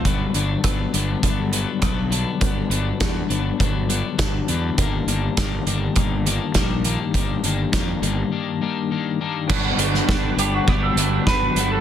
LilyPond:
<<
  \new Staff \with { instrumentName = "Tonewheel organ" } { \time 4/4 \key g \major \tempo 4 = 102 r1 | r1 | r1 | r1 |
<b' fis'' g'' d'''>1 | }
  \new Staff \with { instrumentName = "Clean electric guitar" } { \time 4/4 \key g \major r1 | r1 | r1 | r1 |
r4. g'16 fis'16 g'16 a'8. b'8. a'16 | }
  \new Staff \with { instrumentName = "Clean electric guitar" } { \clef bass \time 4/4 \key g \major <g, d fis b d'>8 <g, d fis b d'>8 <g, d fis b d'>8 <g, d fis b d'>8 <g, d fis b d'>8 <g, d fis b d'>8 <g, d fis b d'>8 <g, d fis b d'>8 | <g, d fis b d'>8 <g, d fis b d'>8 <g, d fis b d'>8 <g, d fis b d'>8 <g, d fis b d'>8 <g, d fis b d'>8 <g, d fis b d'>8 <g, d fis b d'>8 | <g, ees g bes d'>8 <g, ees g bes d'>8 <ees g bes d'>8 <g, ees g bes d'>8 <g, ees g bes d'>8 <g, ees g bes d'>8 <g, ees g bes d'>8 <g, ees g bes d'>8 | <g, ees g bes d'>8 <g, ees g bes d'>8 <g, ees g bes d'>8 <g, ees g bes d'>8 <g, ees g bes d'>8 <g, ees g bes d'>8 <g, ees g bes d'>8 <g, ees g bes d'>8 |
<g, d fis b d'>8 <g, d fis b d'>8 <g, d fis b d'>8 <g, d fis b d'>8 <g, d fis b d'>8 <g, d fis b d'>8 <g, d fis b d'>8 <g, d fis b d'>8 | }
  \new Staff \with { instrumentName = "Clean electric guitar" } { \clef bass \time 4/4 \key g \major r1 | r1 | r1 | r1 |
<g, d fis b d'>8 <g, d fis b d'>8 <g, d fis b d'>8 <g, d fis b d'>8 <g, d fis b d'>8 <g, d fis b d'>8 <g, d fis b d'>8 <g, d fis b d'>8 | }
  \new Staff \with { instrumentName = "Fingered electric bass" } { \clef bass \time 4/4 \key g \major g,,8 g,,8 g,,8 g,,8 g,,4 b,,4 | g,,8 g,,8 e,8 g,,8 g,,4 g,,8 e,8 | g,,8 g,,8 g,,8 g,,8 g,,4 bes,,4 | g,,8 g,,8 f,8 g,,8 r2 |
g,,8 g,,8 g,,8 g,,8 g,,8 g,,8 g,,8 g,,8 | }
  \new DrumStaff \with { instrumentName = "Drums" } \drummode { \time 4/4 <hh bd>8 hh8 <hh bd ss>8 hh8 <hh bd>8 hh8 <hh bd ss>8 hh8 | <hh bd>8 hh8 <hh bd sn>8 hh8 <hh bd>8 hh8 <hh bd sn>8 hh8 | <hh bd>8 hh8 <hh bd sn>8 hh8 <hh bd>8 hh8 <hh bd sn>8 hh8 | <hh bd>8 hh8 <hh bd sn>8 hh8 r4 r4 |
<cymc bd>8 hh16 sn16 <bd sn>8 hh8 bd8 hh8 <bd sn>8 hh8 | }
>>